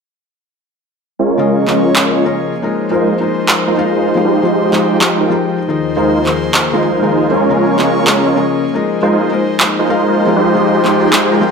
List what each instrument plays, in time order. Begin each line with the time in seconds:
1.19 analog synth pad F3 A#3 C#4 G#4 C#5, supersaw synth G#3 C#4 F4 A#4 C#5
1.37 felt piano C#3 C#4 F4 A#4 D#5
1.67 felt piano C#3 C#4 F4 A#4 D#5, clap
1.95 felt piano C#3 A#4, supersaw synth G#3 C#4 A#4, clap
2.15 supersaw synth G#3 C#4 F4 A#4 C#5
2.24 felt piano C#3 C#4 F4 A#4 D#5
2.53 analog synth pad F3 D#4 C5
2.62 felt piano G#3 D#4 F4 A#4 D#5
2.90 felt piano G#3 D#4 F4 A#4 C5, supersaw synth G#3 D#4 F4 A#4 C5
3.01 supersaw synth G#3 D#4 F4 A#4 C5
3.19 felt piano G#3 D#4 F4 A#4 C5
3.47 felt piano G#3 D#4 F4 A#4 C5, clap
3.67 supersaw synth G#3 D#4 F4 A#4 C5
3.77 felt piano G#3 D#4 F4 A#4 F5
3.97 supersaw synth G#3 D#4 F4 A#4 C5
4.15 felt piano F3 F4 G4 G#4 F5
4.25 analog synth pad F3 G#3 G4, supersaw synth G#3 D#4 F4 G4 C5
4.43 felt piano F3 F4 G4 G#4 D#5
4.72 felt piano F3 F4 G4 G#4 D#5, clap
5.00 felt piano F3 F4 G4 G#4 D#5, supersaw synth G#3 D#4 F4 G4 C5, clap
5.20 supersaw synth G#3 D#4 F4 G4 A#4
5.30 felt piano F3 F4 G4 G#4 G5
5.59 analog synth pad D#2 A#3 G#4 C5
5.68 felt piano D#3 D#4 F4 G#4 A#4 D#5
5.96 felt piano D#3 D#4 F4 G#4 A#4 C5, supersaw synth G#3 D#4 F4 A#4 C5
6.07 supersaw synth G#3 D#4 F4 A#4 C5
6.25 felt piano D#3 D#4 F4 G#4 A#4 C5, clap
6.53 felt piano D#3 D#4 F4 G#4 A#4 C5, clap
6.72 felt piano D#3 D#4 F4 G#4 A#4 D#5, supersaw synth G#3 D#4 F4 A#4 C5
7.02 felt piano D#3 D#4 F4 G#4 A#4 D#5, supersaw synth G#3 D#4 F4 A#4 C5
7.31 supersaw synth G#3 C#4 F4 A#4 C#5, analog synth pad C#4 C#5
7.49 felt piano C#3 C#4 F4 A#4 D#5
7.78 felt piano C#3 C#4 F4 A#4 D#5, clap
8.06 felt piano C#3 C#4 F4 A#4 D#5, supersaw synth G#3 C#4 F4 A#4 C#5, clap
8.26 supersaw synth G#3 C#4 F4 A#4 C#5
8.35 felt piano C#3 C#4 F4 A#4 D#5
8.64 analog synth pad D#4 C5
8.74 felt piano G#3 D#4 F4 A#4 D#5
9.02 felt piano G#3 D#4 F4 A#4 C5, supersaw synth G#3 D#4 F4 A#4 C5
9.13 supersaw synth G#3 D#4 F4 A#4 C5
9.31 felt piano G#3 D#4 F4 A#4 C5
9.59 felt piano G#3 D#4 F4 A#4 C5, clap
9.79 supersaw synth G#3 D#4 F4 A#4 C5
9.88 felt piano G#3 D#4 F4 A#4 F5
10.08 supersaw synth G#3 D#4 F4 A#4 C5
10.26 felt piano F3 F4 G4 G#4 F5
10.36 analog synth pad F3 G#3 G4, supersaw synth G#3 D#4 F4 G4 C5
10.54 felt piano F3 F4 G4 G#4 D#5
10.84 felt piano F3 F4 G4 G#4 D#5, clap
11.12 felt piano F3 F4 G4 G#4 D#5, supersaw synth G#3 D#4 F4 G4 C5, clap
11.32 supersaw synth G#3 D#4 F4 G4 A#4
11.41 felt piano F3 F4 G4 G#4 G5